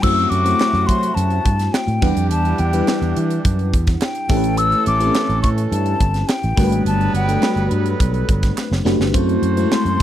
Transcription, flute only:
0.03 0.31 E6 loud
0.30 0.88 D6 loud
0.87 1.16 C6 loud
1.14 1.75 A5 medium
1.73 2.30 G5 medium
2.31 2.61 A5 loud
2.59 3.16 G5 medium
4.03 4.59 G5 loud
4.58 4.86 E6 loud
4.87 5.40 D6 loud
5.43 5.49 C#6 loud
5.71 6.30 A5 medium
6.28 6.86 G5 medium
6.87 7.13 A5 loud
7.16 7.68 G5 medium
9.72 10.03 C6 medium

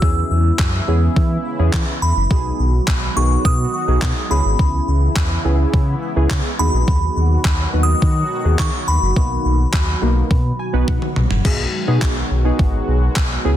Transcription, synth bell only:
0.00 1.41 E6 loud
2.02 3.20 B5 medium
3.17 3.29 C#6 medium
3.45 4.33 D#6 loud
4.31 5.98 B5 medium
6.59 7.70 B5 medium
7.83 8.62 D#6 loud
8.59 8.89 C#6 loud
8.88 10.84 B5 medium

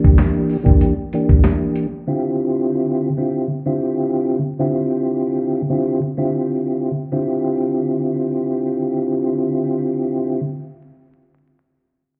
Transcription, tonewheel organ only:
0.00 0.56 E3 medium
0.00 0.57 A#3 medium
0.00 0.57 D4 medium
0.00 0.57 G4 loud
0.63 0.94 E3 medium
0.63 0.94 A#3 medium
0.63 0.94 D4 medium
0.63 0.94 G4 loud
1.13 1.86 E3 medium
1.13 1.87 A#3 medium
1.13 1.87 D4 medium
1.13 1.87 G4 medium
2.07 3.09 D3 loud
2.07 3.09 C4 medium
2.07 3.10 E4 medium
2.07 3.10 F4 medium
2.07 3.10 G4 medium
3.17 3.47 D3 medium
3.17 3.47 C4 medium
3.17 3.47 E4 medium
3.17 3.47 F4 medium
3.17 3.48 G4 medium
3.65 4.39 D3 medium
3.65 4.39 C4 medium
3.65 4.39 E4 medium
3.65 4.39 F4 medium
3.65 4.39 G4 medium
4.59 5.62 D3 medium
4.59 5.62 C4 medium
4.59 5.62 E4 medium
4.59 5.62 F4 medium
4.59 5.62 G4 loud
5.70 5.99 D3 medium
5.70 6.00 C4 medium
5.70 6.00 E4 medium
5.70 6.00 F4 medium
5.70 6.00 G4 loud
6.17 6.91 D3 medium
6.17 6.91 C4 medium
6.17 6.91 E4 medium
6.17 6.91 F4 medium
6.17 6.92 G4 medium
7.12 10.41 D3 medium
7.12 10.41 C4 medium
7.12 10.41 E4 medium
7.12 10.41 F4 medium
7.12 10.41 G4 medium

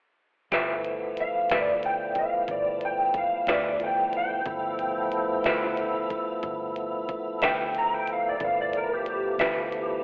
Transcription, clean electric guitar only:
0.52 0.72 G3 medium
0.52 0.72 F4 medium
0.52 0.73 B4 medium
0.52 0.73 E5 medium
1.52 1.71 G3 soft
1.52 1.71 F4 soft
1.52 1.71 B4 medium
1.52 1.71 E5 medium
3.48 3.68 G3 medium
3.48 3.68 F4 medium
3.48 3.68 B4 medium
3.48 3.68 E5 medium
5.46 5.66 G3 medium
5.46 5.66 F4 medium
5.46 5.65 B4 medium
5.46 5.65 E5 medium
7.42 7.63 G3 soft
7.42 7.62 F4 medium
7.42 7.62 B4 medium
7.42 7.62 E5 medium
9.40 9.60 G3 medium
9.40 9.60 F4 medium
9.40 9.60 B4 medium
9.40 9.59 E5 medium

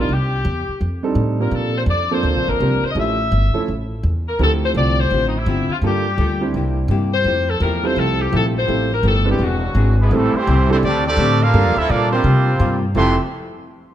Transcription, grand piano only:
1.03 1.37 G3 medium
1.03 1.37 C4 medium
1.03 1.37 D4 medium
1.03 1.37 D#4 medium
1.03 1.37 A4 medium
1.40 1.86 F3 medium
1.40 1.86 A#3 medium
1.40 1.86 C4 medium
1.40 1.86 D4 medium
1.40 1.86 G4 medium
2.11 2.58 F3 medium
2.11 2.58 A#3 medium
2.11 2.57 C4 medium
2.11 2.58 D4 medium
2.11 2.58 A4 medium
2.61 2.81 F3 medium
2.61 2.81 A#3 medium
2.61 2.81 C4 medium
2.61 2.81 D4 medium
2.61 2.81 G4 medium
2.96 3.16 F3 medium
2.96 3.16 A3 medium
2.96 3.16 C#4 medium
2.96 3.16 E4 medium
2.96 3.16 G4 medium
3.54 3.66 F3 medium
3.54 3.66 A3 medium
3.54 3.66 C#4 medium
3.54 3.66 E4 medium
3.54 3.67 A4 medium
4.39 5.39 F3 medium
4.39 5.39 A3 medium
4.39 5.39 C4 medium
4.39 5.39 E4 medium
4.39 5.39 G4 medium
5.83 6.03 G3 medium
5.83 6.03 A#3 medium
5.83 6.03 D4 medium
5.83 6.04 F4 medium
5.83 6.03 A4 medium
6.41 6.87 G3 medium
6.41 6.88 C4 medium
6.41 6.87 D4 medium
6.41 6.88 E4 medium
6.41 6.88 G4 medium
7.83 8.30 G3 medium
7.83 8.30 C4 medium
7.83 8.30 E4 medium
7.83 8.30 F4 medium
7.83 8.30 A4 medium
8.32 8.53 G3 medium
8.32 8.53 C4 medium
8.32 8.53 E4 medium
8.32 8.53 F4 medium
8.32 8.53 A4 medium
8.67 8.88 G3 medium
8.67 8.88 C4 medium
8.67 8.89 E4 medium
8.67 8.88 F4 medium
8.67 8.89 A4 medium
9.25 9.38 G#3 medium
9.25 9.38 C4 medium
9.25 9.38 D4 medium
9.25 9.38 E4 medium
9.25 9.38 B4 medium
10.12 10.32 A3 medium
10.12 10.32 C4 medium
10.12 10.32 E4 medium
10.12 10.32 G4 medium
10.12 10.32 A4 medium
10.69 10.81 C4 medium
10.69 10.81 D4 medium
10.69 10.81 E4 medium
10.69 10.81 G4 medium
10.69 10.82 A4 medium
11.54 11.74 A#3 medium
11.54 11.74 D4 medium
11.54 11.74 F4 medium
11.54 11.74 G4 medium
11.54 11.74 A4 medium
12.12 12.24 C4 medium
12.12 12.24 D4 medium
12.12 12.24 F4 medium
12.12 12.24 G4 medium
12.12 12.24 A#4 medium
12.95 13.16 C4 medium
12.95 13.16 E4 medium
12.95 13.16 F4 medium
12.95 13.16 G4 medium
12.95 13.17 A4 medium

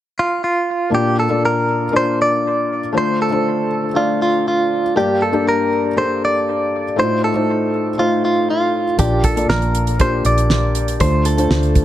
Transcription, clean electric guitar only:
0.19 0.43 F4 medium
0.44 0.90 F4 medium
0.95 1.19 G4 medium
1.19 1.44 A4 medium
1.45 1.96 A#4 medium
1.96 2.20 C5 medium
2.22 2.97 D5 loud
2.98 3.19 C5 medium
3.22 3.98 A4 medium
3.96 4.21 F4 medium
4.22 4.47 F4 medium
4.48 4.97 F4 medium
4.97 5.22 G4 medium
5.22 5.47 A4 medium
5.48 5.98 A#4 medium
5.98 6.23 C5 medium
6.25 6.99 D5 loud
6.99 7.22 C5 medium
7.24 8.01 A4 medium
7.99 8.24 F4 medium
8.25 8.49 F4 medium
8.50 8.99 F4 medium
8.99 9.25 G4 medium
9.25 9.49 A4 medium
9.50 10.01 A#4 medium
10.01 10.26 C5 medium
10.26 11.00 D5 medium
11.01 11.26 C5 medium
11.26 11.85 A4 medium

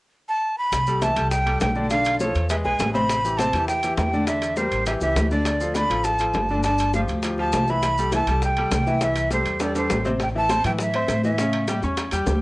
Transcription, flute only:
0.29 0.56 A5 loud
0.58 1.04 B5 loud
1.03 1.30 A5 loud
1.31 1.59 G5 loud
1.61 1.89 G5 medium
1.90 2.18 F5 loud
2.20 2.48 C#5 medium
2.50 2.56 E5 medium
2.64 2.92 G#5 medium
2.94 3.39 B5 loud
3.38 3.67 A5 loud
3.68 3.96 G5 medium
3.97 4.25 G5 medium
4.27 4.59 E5 medium
4.57 4.86 C5 medium
4.87 4.93 E5 medium
5.02 5.29 E5 medium
5.31 5.76 D5 medium
5.75 6.06 B5 loud
6.04 6.63 A5 medium
6.64 6.92 A5 medium
6.95 7.01 F5 medium
7.39 7.72 A5 medium
7.70 8.14 B5 loud
8.15 8.41 A5 medium
8.44 8.71 G5 medium
8.74 9.06 G5 medium
9.04 9.32 E5 medium
9.33 9.60 C5 medium
9.63 9.75 D5 medium
9.77 10.04 C5 medium
10.23 10.29 G5 medium
10.37 10.64 A5 loud
10.66 10.72 G5 loud
10.82 11.22 E5 medium
11.24 11.79 E5 medium

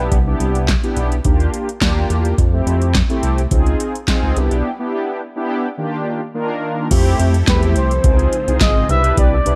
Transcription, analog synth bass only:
0.12 0.35 C2 loud
0.40 0.76 C2 medium
0.97 1.20 B1 medium
1.25 1.48 D#2 loud
1.81 2.05 D#2 medium
2.10 2.33 E2 medium
2.38 2.62 F2 loud
2.67 3.03 F2 loud
3.23 3.47 C2 medium
3.51 3.75 C#2 loud
4.23 4.34 C#2 medium
4.37 4.49 C2 loud
4.51 4.62 B1 medium
6.91 7.15 F2 loud
7.19 7.43 F2 loud
7.48 7.77 E2 loud
7.76 8.00 C2 medium
8.04 8.28 C#2 loud
8.48 8.59 C2 medium
8.61 8.84 G#1 medium
8.89 9.13 C2 loud
9.18 9.41 C2 loud
9.46 9.55 C2 loud

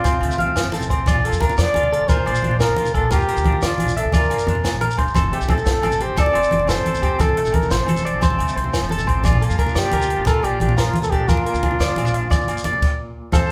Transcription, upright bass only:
0.00 0.19 A1 medium
0.22 0.29 D2 medium
0.39 0.62 C2 medium
0.65 0.91 F1 medium
0.91 1.06 A1 medium
1.08 1.23 A#1 loud
1.32 1.55 F2 medium
1.58 1.66 F2 medium
1.76 1.98 D2 medium
2.01 2.16 A#1 medium
2.27 2.42 A#1 medium
2.44 2.66 A#1 medium
2.69 2.92 D2 medium
2.95 3.10 A#1 medium
3.12 3.27 F2 medium
3.37 3.60 D2 medium
3.63 3.70 D2 medium
3.80 4.03 A#1 medium
4.05 4.28 D2 medium
4.31 4.38 G1 medium
4.47 4.70 F2 medium
4.74 5.00 A#1 medium
4.99 5.14 F#1 medium
5.16 5.31 F1 medium
5.41 5.64 C2 medium
5.66 5.74 C2 medium
5.84 6.07 A1 medium
6.09 6.25 F1 medium
6.35 6.50 F1 medium
6.51 6.74 F1 medium
6.77 7.00 A1 medium
7.03 7.18 F1 medium
7.20 7.35 C2 medium
7.46 7.68 A1 medium
7.71 7.79 A1 medium
7.88 8.11 F1 medium
8.14 8.37 A1 medium
8.40 8.47 D2 medium
8.57 8.79 C2 medium
8.82 9.08 F1 medium
9.08 9.23 A1 medium
9.25 9.40 A#1 loud
9.50 9.73 F2 medium
9.75 9.83 F2 medium
9.93 10.16 D2 medium
10.19 10.34 A#1 medium
10.43 10.59 A#1 medium
10.61 10.84 A#1 medium
10.87 11.09 D2 medium
11.13 11.28 A#1 medium
11.29 11.44 F2 medium
11.54 11.77 D2 medium
11.79 11.87 D2 medium
11.96 12.19 A#1 medium
12.23 12.46 D2 medium
12.48 12.56 G1 medium
12.66 12.81 F2 medium
13.34 13.41 F2 medium

